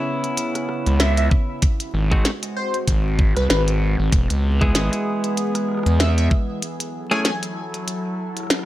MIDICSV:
0, 0, Header, 1, 6, 480
1, 0, Start_track
1, 0, Key_signature, 4, "minor"
1, 0, Tempo, 625000
1, 1247, Time_signature, 4, 2, 24, 8
1, 6645, End_track
2, 0, Start_track
2, 0, Title_t, "Digital synth lead"
2, 0, Program_c, 0, 84
2, 769, Note_on_c, 0, 76, 87
2, 855, Note_off_c, 0, 76, 0
2, 906, Note_on_c, 0, 76, 79
2, 971, Note_off_c, 0, 76, 0
2, 1969, Note_on_c, 0, 72, 97
2, 2118, Note_off_c, 0, 72, 0
2, 2584, Note_on_c, 0, 71, 91
2, 2650, Note_off_c, 0, 71, 0
2, 2690, Note_on_c, 0, 71, 76
2, 2776, Note_off_c, 0, 71, 0
2, 4607, Note_on_c, 0, 76, 88
2, 4694, Note_off_c, 0, 76, 0
2, 4744, Note_on_c, 0, 76, 78
2, 4810, Note_off_c, 0, 76, 0
2, 5467, Note_on_c, 0, 80, 90
2, 5531, Note_off_c, 0, 80, 0
2, 5566, Note_on_c, 0, 80, 79
2, 5654, Note_off_c, 0, 80, 0
2, 6645, End_track
3, 0, Start_track
3, 0, Title_t, "Clean electric guitar"
3, 0, Program_c, 1, 27
3, 0, Note_on_c, 1, 59, 94
3, 0, Note_on_c, 1, 61, 89
3, 0, Note_on_c, 1, 64, 90
3, 0, Note_on_c, 1, 68, 108
3, 1234, Note_off_c, 1, 59, 0
3, 1234, Note_off_c, 1, 61, 0
3, 1234, Note_off_c, 1, 64, 0
3, 1234, Note_off_c, 1, 68, 0
3, 1623, Note_on_c, 1, 56, 89
3, 1625, Note_on_c, 1, 60, 78
3, 1629, Note_on_c, 1, 63, 80
3, 1630, Note_on_c, 1, 66, 95
3, 1763, Note_off_c, 1, 56, 0
3, 1763, Note_off_c, 1, 60, 0
3, 1763, Note_off_c, 1, 66, 0
3, 1764, Note_off_c, 1, 63, 0
3, 3540, Note_on_c, 1, 56, 97
3, 3543, Note_on_c, 1, 59, 92
3, 3545, Note_on_c, 1, 64, 89
3, 3549, Note_on_c, 1, 68, 105
3, 5074, Note_off_c, 1, 56, 0
3, 5074, Note_off_c, 1, 59, 0
3, 5074, Note_off_c, 1, 64, 0
3, 5074, Note_off_c, 1, 68, 0
3, 5462, Note_on_c, 1, 57, 89
3, 5462, Note_on_c, 1, 61, 81
3, 5464, Note_on_c, 1, 64, 81
3, 5464, Note_on_c, 1, 68, 97
3, 5602, Note_off_c, 1, 57, 0
3, 5602, Note_off_c, 1, 61, 0
3, 5602, Note_off_c, 1, 64, 0
3, 5602, Note_off_c, 1, 68, 0
3, 6645, End_track
4, 0, Start_track
4, 0, Title_t, "Ambient pad"
4, 0, Program_c, 2, 92
4, 0, Note_on_c, 2, 49, 84
4, 0, Note_on_c, 2, 59, 77
4, 0, Note_on_c, 2, 64, 75
4, 1214, Note_off_c, 2, 64, 0
4, 1227, Note_off_c, 2, 49, 0
4, 1227, Note_off_c, 2, 59, 0
4, 1246, Note_on_c, 2, 56, 85
4, 1247, Note_on_c, 2, 60, 74
4, 1247, Note_on_c, 2, 66, 92
4, 3147, Note_off_c, 2, 56, 0
4, 3148, Note_off_c, 2, 60, 0
4, 3148, Note_off_c, 2, 66, 0
4, 3170, Note_on_c, 2, 52, 85
4, 3170, Note_on_c, 2, 68, 90
4, 3171, Note_on_c, 2, 59, 77
4, 5069, Note_off_c, 2, 52, 0
4, 5069, Note_off_c, 2, 68, 0
4, 5070, Note_off_c, 2, 59, 0
4, 5089, Note_on_c, 2, 54, 82
4, 5089, Note_on_c, 2, 64, 76
4, 5089, Note_on_c, 2, 69, 92
4, 6645, Note_off_c, 2, 54, 0
4, 6645, Note_off_c, 2, 64, 0
4, 6645, Note_off_c, 2, 69, 0
4, 6645, End_track
5, 0, Start_track
5, 0, Title_t, "Analog synth bass"
5, 0, Program_c, 3, 38
5, 666, Note_on_c, 3, 37, 98
5, 992, Note_off_c, 3, 37, 0
5, 1489, Note_on_c, 3, 32, 97
5, 1711, Note_off_c, 3, 32, 0
5, 2209, Note_on_c, 3, 32, 99
5, 2563, Note_off_c, 3, 32, 0
5, 2586, Note_on_c, 3, 36, 97
5, 2671, Note_off_c, 3, 36, 0
5, 2689, Note_on_c, 3, 32, 95
5, 3043, Note_off_c, 3, 32, 0
5, 3065, Note_on_c, 3, 32, 97
5, 3151, Note_off_c, 3, 32, 0
5, 3168, Note_on_c, 3, 28, 99
5, 3282, Note_off_c, 3, 28, 0
5, 3303, Note_on_c, 3, 37, 99
5, 3630, Note_off_c, 3, 37, 0
5, 3648, Note_on_c, 3, 32, 102
5, 3762, Note_off_c, 3, 32, 0
5, 4502, Note_on_c, 3, 40, 99
5, 4830, Note_off_c, 3, 40, 0
5, 6645, End_track
6, 0, Start_track
6, 0, Title_t, "Drums"
6, 183, Note_on_c, 9, 42, 35
6, 260, Note_off_c, 9, 42, 0
6, 287, Note_on_c, 9, 42, 79
6, 364, Note_off_c, 9, 42, 0
6, 424, Note_on_c, 9, 37, 39
6, 424, Note_on_c, 9, 42, 51
6, 501, Note_off_c, 9, 37, 0
6, 501, Note_off_c, 9, 42, 0
6, 527, Note_on_c, 9, 37, 39
6, 604, Note_off_c, 9, 37, 0
6, 664, Note_on_c, 9, 42, 36
6, 741, Note_off_c, 9, 42, 0
6, 766, Note_on_c, 9, 38, 123
6, 766, Note_on_c, 9, 42, 78
6, 843, Note_off_c, 9, 38, 0
6, 843, Note_off_c, 9, 42, 0
6, 901, Note_on_c, 9, 42, 53
6, 978, Note_off_c, 9, 42, 0
6, 1009, Note_on_c, 9, 36, 109
6, 1085, Note_off_c, 9, 36, 0
6, 1246, Note_on_c, 9, 42, 81
6, 1249, Note_on_c, 9, 36, 116
6, 1323, Note_off_c, 9, 42, 0
6, 1325, Note_off_c, 9, 36, 0
6, 1383, Note_on_c, 9, 42, 55
6, 1460, Note_off_c, 9, 42, 0
6, 1625, Note_on_c, 9, 36, 105
6, 1702, Note_off_c, 9, 36, 0
6, 1728, Note_on_c, 9, 38, 121
6, 1728, Note_on_c, 9, 42, 76
6, 1805, Note_off_c, 9, 38, 0
6, 1805, Note_off_c, 9, 42, 0
6, 1864, Note_on_c, 9, 42, 53
6, 1941, Note_off_c, 9, 42, 0
6, 2105, Note_on_c, 9, 42, 36
6, 2181, Note_off_c, 9, 42, 0
6, 2208, Note_on_c, 9, 42, 78
6, 2209, Note_on_c, 9, 36, 61
6, 2285, Note_off_c, 9, 36, 0
6, 2285, Note_off_c, 9, 42, 0
6, 2448, Note_on_c, 9, 36, 103
6, 2525, Note_off_c, 9, 36, 0
6, 2585, Note_on_c, 9, 37, 37
6, 2585, Note_on_c, 9, 42, 36
6, 2662, Note_off_c, 9, 37, 0
6, 2662, Note_off_c, 9, 42, 0
6, 2688, Note_on_c, 9, 38, 117
6, 2688, Note_on_c, 9, 42, 80
6, 2765, Note_off_c, 9, 38, 0
6, 2765, Note_off_c, 9, 42, 0
6, 2825, Note_on_c, 9, 42, 51
6, 2902, Note_off_c, 9, 42, 0
6, 3168, Note_on_c, 9, 36, 110
6, 3168, Note_on_c, 9, 42, 83
6, 3244, Note_off_c, 9, 42, 0
6, 3245, Note_off_c, 9, 36, 0
6, 3304, Note_on_c, 9, 42, 55
6, 3381, Note_off_c, 9, 42, 0
6, 3544, Note_on_c, 9, 36, 105
6, 3621, Note_off_c, 9, 36, 0
6, 3647, Note_on_c, 9, 38, 117
6, 3647, Note_on_c, 9, 42, 79
6, 3724, Note_off_c, 9, 38, 0
6, 3724, Note_off_c, 9, 42, 0
6, 3785, Note_on_c, 9, 42, 53
6, 3862, Note_off_c, 9, 42, 0
6, 4024, Note_on_c, 9, 42, 37
6, 4101, Note_off_c, 9, 42, 0
6, 4127, Note_on_c, 9, 42, 79
6, 4204, Note_off_c, 9, 42, 0
6, 4263, Note_on_c, 9, 37, 41
6, 4263, Note_on_c, 9, 42, 52
6, 4340, Note_off_c, 9, 37, 0
6, 4340, Note_off_c, 9, 42, 0
6, 4366, Note_on_c, 9, 37, 18
6, 4389, Note_off_c, 9, 37, 0
6, 4389, Note_on_c, 9, 37, 21
6, 4412, Note_off_c, 9, 37, 0
6, 4412, Note_on_c, 9, 37, 25
6, 4434, Note_off_c, 9, 37, 0
6, 4434, Note_on_c, 9, 37, 30
6, 4446, Note_off_c, 9, 37, 0
6, 4446, Note_on_c, 9, 37, 31
6, 4480, Note_off_c, 9, 37, 0
6, 4480, Note_on_c, 9, 37, 36
6, 4503, Note_on_c, 9, 42, 35
6, 4557, Note_off_c, 9, 37, 0
6, 4580, Note_off_c, 9, 42, 0
6, 4608, Note_on_c, 9, 38, 114
6, 4608, Note_on_c, 9, 42, 81
6, 4684, Note_off_c, 9, 38, 0
6, 4684, Note_off_c, 9, 42, 0
6, 4745, Note_on_c, 9, 42, 54
6, 4822, Note_off_c, 9, 42, 0
6, 4847, Note_on_c, 9, 36, 101
6, 4924, Note_off_c, 9, 36, 0
6, 5087, Note_on_c, 9, 42, 87
6, 5164, Note_off_c, 9, 42, 0
6, 5224, Note_on_c, 9, 42, 57
6, 5301, Note_off_c, 9, 42, 0
6, 5464, Note_on_c, 9, 38, 39
6, 5464, Note_on_c, 9, 42, 39
6, 5541, Note_off_c, 9, 38, 0
6, 5541, Note_off_c, 9, 42, 0
6, 5567, Note_on_c, 9, 38, 119
6, 5567, Note_on_c, 9, 42, 83
6, 5644, Note_off_c, 9, 38, 0
6, 5644, Note_off_c, 9, 42, 0
6, 5705, Note_on_c, 9, 42, 55
6, 5781, Note_off_c, 9, 42, 0
6, 5945, Note_on_c, 9, 42, 37
6, 6022, Note_off_c, 9, 42, 0
6, 6049, Note_on_c, 9, 42, 81
6, 6126, Note_off_c, 9, 42, 0
6, 6425, Note_on_c, 9, 37, 18
6, 6425, Note_on_c, 9, 42, 37
6, 6452, Note_off_c, 9, 37, 0
6, 6452, Note_on_c, 9, 37, 20
6, 6476, Note_off_c, 9, 37, 0
6, 6476, Note_on_c, 9, 37, 22
6, 6502, Note_off_c, 9, 42, 0
6, 6503, Note_off_c, 9, 37, 0
6, 6503, Note_on_c, 9, 37, 24
6, 6529, Note_off_c, 9, 37, 0
6, 6529, Note_on_c, 9, 37, 28
6, 6529, Note_on_c, 9, 38, 117
6, 6529, Note_on_c, 9, 42, 84
6, 6562, Note_off_c, 9, 37, 0
6, 6562, Note_on_c, 9, 37, 30
6, 6597, Note_off_c, 9, 37, 0
6, 6597, Note_on_c, 9, 37, 34
6, 6606, Note_off_c, 9, 38, 0
6, 6606, Note_off_c, 9, 42, 0
6, 6645, Note_off_c, 9, 37, 0
6, 6645, End_track
0, 0, End_of_file